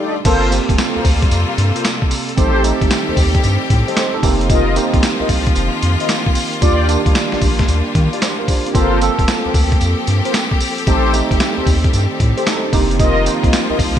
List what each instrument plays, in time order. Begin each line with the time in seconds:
Already playing: string section D#3 G3 A3 F4 D5, tine electric piano G3 A3 D4 D#4 G4 A4
0.00 analog polysynth D#4 G4 A4 D5
0.25 analog synth bass G1, string section C3 G3 A#3 F4 A4, tine electric piano A#3 C4 F4 A4, analog polysynth F4 A4 A#4 C5, kick, closed hi-hat, crash, tambourine
0.51 tine electric piano A#3 C4 F4 G4, closed hi-hat, tambourine
0.69 analog synth bass F1, kick, closed hi-hat
0.78 snare, clap, closed hi-hat, tambourine
0.96 analog synth bass D2, analog polysynth F4 A4 A#4 C5
1.05 analog synth bass D2, kick, open hi-hat, tambourine
1.22 kick, closed hi-hat
1.31 analog synth bass F2, closed hi-hat, tambourine
1.58 analog synth bass G2, closed hi-hat
1.75 analog polysynth F4 A4 A#4 C5, closed hi-hat
1.85 snare, clap, closed hi-hat, tambourine
2.02 kick
2.11 open hi-hat, tambourine
2.29 closed hi-hat
2.37 analog synth bass A1, string section D#3 G3 C4 G4, tine electric piano A3 C4 D#4 G4, analog polysynth G4 A4 C5, kick, closed hi-hat, tambourine
2.64 tine electric piano A3 C4 D#4 G4, closed hi-hat, tambourine
2.81 analog synth bass G1, kick, closed hi-hat
2.91 snare, clap, closed hi-hat, tambourine
3.08 analog synth bass D#2, analog polysynth G4 A4 C5
3.17 analog synth bass D#2, kick, open hi-hat, tambourine
3.35 kick, closed hi-hat
3.43 analog synth bass G2, closed hi-hat, tambourine
3.70 analog synth bass A2, kick, closed hi-hat
3.87 analog polysynth G4 A4 C5, tine electric piano A4 D#5, closed hi-hat
3.97 tine electric piano G4 C5, snare, clap, closed hi-hat, tambourine
4.14 tine electric piano D#4 A4
4.23 analog synth bass F1, string section D#3 F3 A#3 F4, tine electric piano A#3 C4 D#4 G4, kick, open hi-hat, tambourine
4.41 closed hi-hat
4.50 analog polysynth F4 A#4 D#5, kick, closed hi-hat, tambourine
4.76 tine electric piano A#3 C4 D#4 G4, closed hi-hat, tambourine
4.94 analog synth bass A#1, kick, closed hi-hat
5.03 snare, clap, closed hi-hat, tambourine
5.20 analog synth bass C2, analog polysynth F4 A#4 D#5
5.29 analog synth bass C2, kick, open hi-hat, tambourine
5.47 kick, closed hi-hat
5.55 analog synth bass F1, closed hi-hat, tambourine
5.83 analog synth bass F2, closed hi-hat
5.99 analog polysynth F4 A#4 D#5, closed hi-hat
6.09 snare, clap, closed hi-hat, tambourine
6.26 kick
6.35 open hi-hat, tambourine
6.53 closed hi-hat
6.62 analog synth bass D#2, string section G3 D4, tine electric piano A#3 D4 F4 G4, analog polysynth F4 G4 D5, kick, closed hi-hat, tambourine
6.89 tine electric piano A#3 D4 F4 G4, closed hi-hat, tambourine
7.06 analog synth bass D2, kick, closed hi-hat
7.15 snare, clap, closed hi-hat, tambourine
7.32 analog synth bass A#1, analog polysynth F4 G4 D5, snare
7.42 analog synth bass A#1, kick, open hi-hat, tambourine
7.59 kick, snare, closed hi-hat
7.68 analog synth bass D#2, closed hi-hat, tambourine
7.95 analog synth bass D#3, kick, closed hi-hat
8.12 analog polysynth F4 G4 D5, closed hi-hat
8.22 tine electric piano G4 C5, snare, clap, closed hi-hat, tambourine
8.39 tine electric piano F4 A#4
8.48 tine electric piano D4 G4, kick, open hi-hat, tambourine
8.66 tine electric piano C4 F4, closed hi-hat
8.74 analog synth bass G1, string section F3 C4 G4 A4, tine electric piano A#3 C4 F4 A4, analog polysynth F4 A4 A#4 C5, kick, closed hi-hat, tambourine
9.01 tine electric piano A#3 C4 F4 A4, closed hi-hat, tambourine
9.19 analog synth bass F1, kick, closed hi-hat
9.28 snare, clap, closed hi-hat, tambourine
9.45 analog synth bass D2, analog polysynth F4 A4 A#4 C5
9.54 analog synth bass D2, kick, open hi-hat, tambourine
9.72 kick, closed hi-hat
9.81 analog synth bass F2, closed hi-hat, tambourine
10.07 analog synth bass G2, closed hi-hat
10.24 analog polysynth F4 A4 A#4 C5, closed hi-hat
10.34 snare, clap, closed hi-hat, tambourine
10.51 kick
10.60 open hi-hat, tambourine
10.78 closed hi-hat
10.87 analog synth bass A1, string section D#3 G3, tine electric piano A3 C4 D#4 G4, analog polysynth G4 A4 C5, kick, closed hi-hat, tambourine
11.13 tine electric piano A3 C4 D#4 G4, closed hi-hat, tambourine
11.31 analog synth bass G1, kick, closed hi-hat
11.40 snare, clap, closed hi-hat, tambourine
11.57 analog synth bass D#2, analog polysynth G4 A4 C5
11.67 analog synth bass D#2, kick, open hi-hat, tambourine
11.84 kick, closed hi-hat
11.93 analog synth bass G2, closed hi-hat, tambourine
12.20 analog synth bass A2, kick, closed hi-hat
12.37 analog polysynth G4 A4 C5, tine electric piano G4 C5, closed hi-hat
12.47 tine electric piano D#4 A4, snare, clap, closed hi-hat, tambourine
12.64 tine electric piano D4 G4
12.72 analog synth bass F1, string section F3 A#3 F4, tine electric piano A#3 C4 D#4 G4, kick, open hi-hat, tambourine
12.91 closed hi-hat
12.99 analog polysynth F4 A#4 D#5, kick, closed hi-hat, tambourine
13.26 tine electric piano A#3 C4 D#4 F4, closed hi-hat, tambourine
13.44 analog synth bass A#1, kick, closed hi-hat
13.53 snare, clap, closed hi-hat, tambourine
13.70 analog synth bass C2, analog polysynth F4 A#4 D#5
13.79 analog synth bass C2, kick, open hi-hat, tambourine